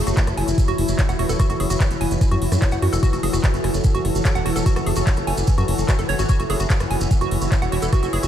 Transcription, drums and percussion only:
0.07 closed hi-hat, maracas
0.17 kick, clap, closed hi-hat, maracas
0.27 cross-stick, closed hi-hat, maracas
0.38 open hi-hat
0.48 closed hi-hat, maracas
0.58 kick, closed hi-hat, maracas
0.67 cross-stick, closed hi-hat, maracas
0.78 open hi-hat
0.88 closed hi-hat, maracas
0.99 kick, clap, closed hi-hat, maracas
1.09 cross-stick, closed hi-hat, maracas
1.19 open hi-hat
1.29 closed hi-hat, maracas
1.39 kick, cross-stick, closed hi-hat, maracas
1.50 closed hi-hat, maracas
1.60 open hi-hat
1.70 closed hi-hat, maracas
1.80 kick, cross-stick, clap, closed hi-hat, maracas
1.91 closed hi-hat, maracas
2.01 open hi-hat
2.11 closed hi-hat, maracas
2.21 kick, cross-stick, closed hi-hat, maracas
2.31 closed hi-hat, maracas
2.42 open hi-hat
2.52 cross-stick, closed hi-hat, maracas
2.62 kick, clap, closed hi-hat, maracas
2.71 closed hi-hat, maracas
2.82 open hi-hat
2.93 cross-stick, closed hi-hat, maracas
3.03 kick, closed hi-hat, maracas
3.13 closed hi-hat, maracas
3.23 open hi-hat
3.33 cross-stick, closed hi-hat, maracas
3.44 kick, clap, closed hi-hat, maracas
3.54 closed hi-hat, maracas
3.64 cross-stick, open hi-hat
3.74 closed hi-hat, maracas
3.84 kick, closed hi-hat, maracas
3.95 closed hi-hat, maracas
4.05 cross-stick, open hi-hat
4.15 closed hi-hat, maracas
4.25 kick, clap, closed hi-hat, maracas
4.35 closed hi-hat, maracas
4.46 cross-stick, open hi-hat
4.56 closed hi-hat, maracas
4.66 kick, closed hi-hat, maracas
4.76 cross-stick, closed hi-hat, maracas
4.86 open hi-hat
4.96 closed hi-hat, maracas
5.07 kick, clap, closed hi-hat, maracas
5.16 cross-stick, closed hi-hat, maracas
5.27 open hi-hat
5.37 closed hi-hat, maracas
5.47 kick, closed hi-hat, maracas
5.58 cross-stick, closed hi-hat, maracas
5.68 open hi-hat
5.78 closed hi-hat, maracas
5.88 kick, cross-stick, clap, closed hi-hat, maracas
5.99 closed hi-hat, maracas
6.09 open hi-hat
6.19 closed hi-hat, maracas
6.29 kick, closed hi-hat, maracas
6.40 closed hi-hat, maracas
6.50 cross-stick, open hi-hat
6.60 closed hi-hat, maracas
6.70 kick, clap, closed hi-hat, maracas
6.80 cross-stick, closed hi-hat, maracas
6.91 open hi-hat
7.01 closed hi-hat, maracas
7.11 kick, closed hi-hat, maracas
7.21 cross-stick, closed hi-hat, maracas
7.31 open hi-hat
7.42 closed hi-hat, maracas
7.52 kick, clap, closed hi-hat, maracas
7.62 cross-stick, closed hi-hat, maracas
7.72 open hi-hat
7.82 closed hi-hat, maracas
7.93 kick, cross-stick, closed hi-hat, maracas
8.03 closed hi-hat, maracas
8.13 open hi-hat
8.23 closed hi-hat, maracas

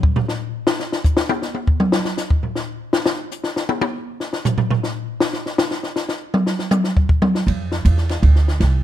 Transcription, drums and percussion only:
0.03 kick
0.16 floor tom
0.28 snare
0.67 snare
0.79 snare
0.92 snare
1.04 kick, hi-hat pedal
1.17 snare
1.29 high tom
1.42 snare
1.54 high tom
1.67 kick
1.80 mid tom
1.92 snare
2.05 snare
2.17 snare, hi-hat pedal
2.30 kick
2.43 floor tom
2.55 snare
2.93 snare
3.06 snare
3.31 hi-hat pedal
3.44 snare
3.56 snare
3.69 high tom
3.81 high tom
4.20 snare
4.33 snare
4.45 floor tom, hi-hat pedal
4.58 floor tom
4.71 floor tom
4.83 snare
5.20 snare
5.33 snare
5.46 snare
5.58 snare, hi-hat pedal
5.71 snare
5.83 snare
5.96 snare
6.09 snare
6.34 mid tom
6.46 snare
6.59 snare
6.71 hi-hat pedal, mid tom
6.84 snare
6.97 kick
7.09 kick
7.22 mid tom
7.35 snare
7.48 ride
7.72 snare
7.85 hi-hat pedal, ride
7.97 snare
8.09 snare, ride
8.23 ride
8.36 snare
8.48 snare
8.60 snare, ride

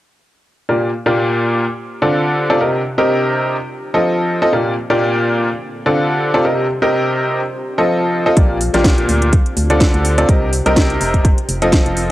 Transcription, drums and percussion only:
8.37 kick, closed hi-hat
8.61 open hi-hat
8.74 snare, closed hi-hat
8.84 kick, snare, closed hi-hat
8.98 closed hi-hat
9.09 open hi-hat
9.22 closed hi-hat
9.33 kick, closed hi-hat
9.46 closed hi-hat
9.57 open hi-hat
9.70 closed hi-hat
9.80 kick, snare, closed hi-hat
9.94 closed hi-hat
10.05 open hi-hat
10.18 closed hi-hat
10.29 kick, closed hi-hat
10.53 open hi-hat
10.66 closed hi-hat
10.76 kick, snare, closed hi-hat
10.90 closed hi-hat
11.01 open hi-hat
11.14 kick, closed hi-hat
11.25 kick, closed hi-hat
11.38 closed hi-hat
11.49 open hi-hat
11.62 closed hi-hat
11.72 kick, snare, closed hi-hat
11.86 closed hi-hat
11.97 open hi-hat

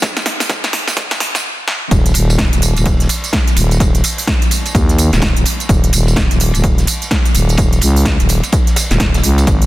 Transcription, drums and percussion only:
0.02 kick, snare, closed hi-hat, tambourine
0.17 snare, closed hi-hat, tambourine
0.26 snare, open hi-hat
0.40 snare, open hi-hat, tambourine
0.49 kick, snare, closed hi-hat, tambourine
0.64 snare, closed hi-hat, tambourine
0.73 snare, open hi-hat
0.88 snare, closed hi-hat, tambourine
0.97 kick, snare, closed hi-hat
1.11 snare, closed hi-hat, tambourine
1.20 snare, open hi-hat
1.35 snare, closed hi-hat, tambourine
1.68 snare
1.91 kick, closed hi-hat, ride, tambourine
2.06 closed hi-hat, tambourine
2.14 open hi-hat, ride, tambourine
2.30 ride, tambourine
2.38 kick, snare, closed hi-hat, ride
2.53 closed hi-hat, ride, tambourine
2.62 open hi-hat, ride, tambourine
2.76 closed hi-hat, ride, tambourine
2.86 kick, closed hi-hat, ride, tambourine
3.00 snare, closed hi-hat, tambourine
3.09 open hi-hat, ride, tambourine
3.24 closed hi-hat, tambourine
3.33 kick, snare, closed hi-hat, ride
3.47 closed hi-hat, ride, tambourine
3.56 open hi-hat, ride, tambourine
3.71 closed hi-hat, tambourine
3.80 kick, closed hi-hat, ride, tambourine
3.95 closed hi-hat, tambourine
4.04 open hi-hat, ride, tambourine
4.18 open hi-hat, tambourine
4.27 kick, snare, closed hi-hat, ride, tambourine
4.42 closed hi-hat, ride, tambourine
4.51 open hi-hat, ride, tambourine
4.66 closed hi-hat, ride, tambourine
4.75 kick, closed hi-hat, ride, tambourine
4.89 snare, closed hi-hat, tambourine
4.98 open hi-hat, ride, tambourine
5.13 snare, closed hi-hat, tambourine
5.22 kick, snare, closed hi-hat, ride, tambourine
5.36 closed hi-hat, tambourine
5.45 open hi-hat, ride, tambourine
5.60 closed hi-hat, tambourine
5.69 kick, closed hi-hat, ride, tambourine
5.84 closed hi-hat, tambourine
5.93 open hi-hat, ride, tambourine
6.07 ride, tambourine
6.16 kick, snare, closed hi-hat, ride
6.31 closed hi-hat, ride, tambourine
6.40 open hi-hat, ride, tambourine
6.54 closed hi-hat, ride, tambourine
6.64 kick, closed hi-hat, ride, tambourine
6.78 snare, closed hi-hat, tambourine
6.87 open hi-hat, ride, tambourine
7.02 closed hi-hat, tambourine
7.11 kick, snare, closed hi-hat, ride, tambourine
7.25 closed hi-hat, ride, tambourine
7.35 open hi-hat, ride, tambourine
7.49 closed hi-hat, tambourine
7.57 kick, closed hi-hat, ride, tambourine
7.73 closed hi-hat, tambourine
7.81 open hi-hat, ride, tambourine
7.96 open hi-hat, tambourine
8.05 kick, snare, closed hi-hat, tambourine
8.20 closed hi-hat, ride, tambourine
8.29 open hi-hat, ride, tambourine
8.43 closed hi-hat, ride, tambourine
8.52 kick, closed hi-hat, ride, tambourine
8.67 snare, closed hi-hat, tambourine
8.76 snare, open hi-hat, ride, tambourine
8.91 snare, closed hi-hat, ride, tambourine
9.00 kick, snare, closed hi-hat, ride, tambourine
9.14 snare, closed hi-hat, ride, tambourine
9.24 open hi-hat, ride, tambourine
9.38 closed hi-hat, ride, tambourine
9.47 kick, closed hi-hat, ride, tambourine
9.62 closed hi-hat, tambourine

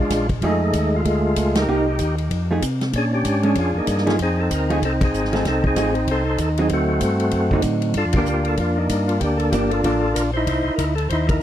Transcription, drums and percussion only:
0.10 kick, snare, hi-hat pedal, ride
0.29 kick, ride
0.42 kick, ride
0.73 kick, hi-hat pedal, ride
1.05 kick, ride
1.36 kick, hi-hat pedal, ride
1.55 snare, ride
1.99 kick, hi-hat pedal, ride
2.18 ride
2.31 kick, ride
2.62 kick, hi-hat pedal, ride
2.81 snare, ride
2.93 kick, ride
3.25 kick, hi-hat pedal, ride
3.43 ride
3.55 kick, ride
3.87 kick, hi-hat pedal, ride
3.98 snare
4.07 snare, ride
4.19 kick, ride
4.51 kick, hi-hat pedal, ride
4.70 ride
4.82 kick, ride
5.01 kick, ride
5.14 hi-hat pedal
5.25 snare
5.33 snare, ride
5.45 kick, snare, ride
5.64 kick
5.76 kick, hi-hat pedal, ride
5.95 ride
6.08 kick, ride
6.38 kick, hi-hat pedal, ride
6.58 ride
6.69 kick, ride
7.01 kick, hi-hat pedal, ride
7.20 ride
7.31 kick, ride
7.51 kick
7.62 kick, hi-hat pedal, ride
7.82 ride
7.94 kick, ride
8.13 kick, ride
8.26 hi-hat pedal
8.45 ride
8.57 kick, ride
8.89 kick, hi-hat pedal, ride
9.09 ride
9.21 kick, ride
9.40 ride
9.52 kick, hi-hat pedal, ride
9.71 ride
9.84 kick, ride
10.15 kick, hi-hat pedal, ride
10.47 kick, ride
10.78 kick, hi-hat pedal, ride
10.98 ride
11.10 kick, ride
11.29 kick, ride

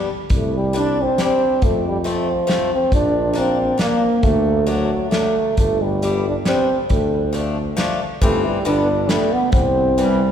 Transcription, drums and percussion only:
0.30 kick, closed hi-hat
0.75 closed hi-hat
1.18 snare, closed hi-hat
1.62 kick, closed hi-hat
2.07 closed hi-hat
2.49 snare, closed hi-hat
2.92 kick, closed hi-hat
3.36 closed hi-hat
3.79 snare, closed hi-hat
4.23 kick, closed hi-hat
4.67 closed hi-hat
5.12 snare, closed hi-hat
5.57 kick, closed hi-hat
6.02 closed hi-hat
6.45 snare, closed hi-hat
6.90 kick, closed hi-hat
7.34 closed hi-hat
7.78 snare, closed hi-hat
8.22 kick, closed hi-hat
8.65 closed hi-hat
9.09 snare, closed hi-hat
9.52 kick, closed hi-hat
9.98 closed hi-hat

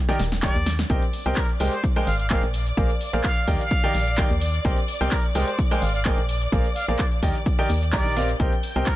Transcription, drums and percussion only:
0.09 snare, closed hi-hat
0.19 snare, open hi-hat
0.32 snare, closed hi-hat
0.42 kick, snare, clap, closed hi-hat
0.56 closed hi-hat
0.66 snare, open hi-hat
0.79 snare
0.90 kick, closed hi-hat, shaker
1.02 closed hi-hat, shaker
1.13 open hi-hat
1.26 closed hi-hat, shaker
1.36 kick, clap, closed hi-hat, shaker
1.49 closed hi-hat, shaker
1.60 open hi-hat
1.73 closed hi-hat, shaker
1.84 kick, closed hi-hat, shaker
1.97 shaker
2.07 open hi-hat
2.20 closed hi-hat, shaker
2.30 kick, clap, closed hi-hat, shaker
2.43 closed hi-hat, shaker
2.54 open hi-hat
2.66 closed hi-hat, shaker
2.77 kick, closed hi-hat, shaker
2.90 closed hi-hat, shaker
3.01 open hi-hat
3.13 closed hi-hat, shaker
3.24 kick, clap, closed hi-hat, shaker
3.37 closed hi-hat, shaker
3.48 kick, open hi-hat
3.60 closed hi-hat, shaker
3.71 kick, closed hi-hat, shaker
3.84 shaker
3.94 open hi-hat
4.07 closed hi-hat, shaker
4.17 kick, clap, closed hi-hat, shaker
4.30 closed hi-hat, shaker
4.41 open hi-hat
4.54 closed hi-hat, shaker
4.65 kick, closed hi-hat, shaker
4.77 closed hi-hat, shaker
4.88 open hi-hat
5.01 closed hi-hat, shaker
5.11 kick, clap, closed hi-hat, shaker
5.24 closed hi-hat, shaker
5.35 open hi-hat
5.48 closed hi-hat, shaker
5.59 kick, closed hi-hat, shaker
5.72 shaker
5.82 open hi-hat
5.95 closed hi-hat, shaker
6.05 kick, clap, closed hi-hat, shaker
6.18 closed hi-hat, shaker
6.29 open hi-hat
6.42 closed hi-hat, shaker
6.52 kick, closed hi-hat, shaker
6.65 closed hi-hat, shaker
6.76 open hi-hat
6.88 closed hi-hat, shaker
6.99 kick, clap, closed hi-hat, shaker
7.12 closed hi-hat, shaker
7.23 kick, open hi-hat
7.35 closed hi-hat, shaker
7.46 kick, closed hi-hat, shaker
7.59 open hi-hat, shaker
7.70 open hi-hat
7.82 closed hi-hat, shaker
7.92 kick, clap, closed hi-hat, shaker
8.06 closed hi-hat, shaker
8.16 open hi-hat
8.29 closed hi-hat, shaker
8.40 kick, closed hi-hat, shaker
8.52 closed hi-hat, shaker
8.63 open hi-hat
8.76 closed hi-hat, shaker
8.86 kick, clap, closed hi-hat, shaker

